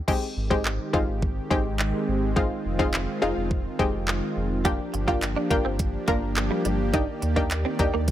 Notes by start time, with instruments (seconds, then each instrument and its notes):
0.08 supersaw synth D#3 G#3 C4 G4, synth pluck G#3 C4 D#4 G4, kick, crash
0.37 sub bass G#1
0.50 synth pluck G#3 C4 D#4 G4, kick
0.65 clap
0.93 sub bass G#1, synth pluck G#3 C4 D#4 F4, kick
1.08 sub bass G#1
1.22 kick
1.50 sub bass G#1, synth pluck G#3 C4 D#4 G4, kick
1.79 clap
2.08 sub bass G#1
2.36 supersaw synth D#3 F4, synth pluck G#3 C4 D#4 F4, kick
2.65 sub bass F1
2.79 synth pluck G#3 C4 D#4 F4, kick
2.94 clap
3.22 sub bass F1, synth pluck G#3 C4 D#4 F4
3.37 sub bass F1
3.51 kick
3.79 sub bass F1, synth pluck G#3 C4 D#4 G4, kick
4.08 clap
4.37 sub bass F1
4.65 supersaw synth F3 A#3 D4 G4, synth pluck A#3 D4 F4 G4, clean electric guitar G4, kick, closed hi-hat
4.94 sub bass G1, muted clean electric guitar stroke, closed hi-hat
5.08 synth pluck A#3 D4 F4 G4, clean electric guitar F4, kick
5.22 clap, closed hi-hat
5.36 clean electric guitar D4
5.50 sub bass G1, synth pluck A#3 D4 F4 G4, muted clean electric guitar stroke, kick, closed hi-hat
5.65 sub bass G1, clean electric guitar C4
5.79 kick, closed hi-hat
6.08 sub bass G1, synth pluck A#3 D4 F4 A#4, clean electric guitar A#3, kick, closed hi-hat
6.36 muted clean electric guitar stroke, clap, closed hi-hat
6.51 clean electric guitar G3
6.65 sub bass G1, clean electric guitar G3, closed hi-hat
6.93 supersaw synth D#3 D5, synth pluck A#3 D4 D#4 G4, clean electric guitar D#4, kick, closed hi-hat
7.22 sub bass D#2, muted clean electric guitar stroke, closed hi-hat
7.36 synth pluck A#3 D4 D#4 G4, clean electric guitar D4, kick
7.51 clap, closed hi-hat
7.65 clean electric guitar C4
7.79 sub bass D#2, synth pluck A#3 D4 D#4 G4, muted clean electric guitar stroke, kick, closed hi-hat
7.94 sub bass D#2, clean electric guitar A#3
8.08 kick, closed hi-hat